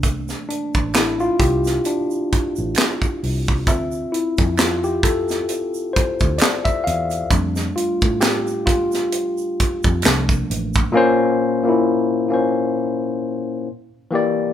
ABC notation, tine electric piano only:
X:1
M:4/4
L:1/16
Q:"Swing 16ths" 1/4=66
K:Bblyd
V:1 name="Tine electric piano"
z2 D2 E F G2 D6 z2 | z2 E2 F G A2 z2 c2 d e f2 | z2 F2 G2 F6 z4 | [B,,B,_Dc]3 [B,,B,DE]3 [B,,B,Dc]6 z2 [E,B,G=d]2 |]
V:2 name="Tine electric piano"
[E,A,B,D]2 z12 z2 | [CFe]16 | [G,A,D]2 z8 z2 [F,A,B,D]4 | z16 |]